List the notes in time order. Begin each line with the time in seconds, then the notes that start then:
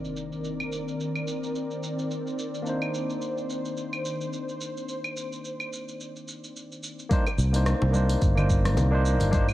Already playing: D#3 A#3 C4 D4 D#4 A#4 C5 D5, impact
0.05 shaker
0.17 shaker
0.33 shaker
0.45 shaker
0.60 claves, shaker
0.72 shaker
0.88 shaker
1.00 shaker
1.15 claves, shaker
1.27 shaker
1.43 shaker
1.55 shaker
1.71 shaker
1.83 shaker
1.99 shaker
2.11 shaker
2.27 shaker
2.39 shaker
2.55 shaker
2.62 A#3 D4 C5, shaker
2.67 D#4 C5
2.82 claves, shaker
2.95 shaker
3.10 shaker
3.22 shaker
3.38 shaker
3.50 shaker
3.65 shaker
3.77 shaker
3.93 claves, shaker
4.05 shaker
4.21 shaker
4.33 shaker
4.49 shaker
4.61 shaker
4.77 shaker
4.89 shaker
5.04 claves, shaker
5.17 shaker
5.33 shaker
5.45 shaker
5.60 claves, shaker
5.73 shaker
5.88 shaker
6.00 shaker
6.16 shaker
6.28 shaker
6.44 shaker
6.56 shaker
6.72 shaker
6.83 shaker
6.99 shaker
7.09 A#3 D4 D#4 C5, kick, open hi-hat, high conga, shaker
7.27 high bongo, claves, shaker
7.38 C2, shaker
7.52 A#3 D4 D#4 C5, open hi-hat, shaker
7.66 cross-stick, open hi-hat, shaker
7.82 C2, high bongo
7.92 A#3 D4 D#4 C5, high conga, shaker
8.10 open hi-hat, shaker
8.22 G1, kick, open hi-hat, high bongo, shaker
8.35 A#3 D4 D#4 C5, low conga, claves, shaker
8.50 kick, shaker
8.65 cross-stick, open hi-hat, high conga, shaker
8.77 C2, open hi-hat, high bongo, low conga, shaker
8.91 A#3 D4 D#4 C5
9.05 shaker
9.20 G1, open hi-hat, high bongo, low conga, shaker
9.31 A#3 D4 D#4 C5, kick, open hi-hat, high conga, shaker
9.49 claves, shaker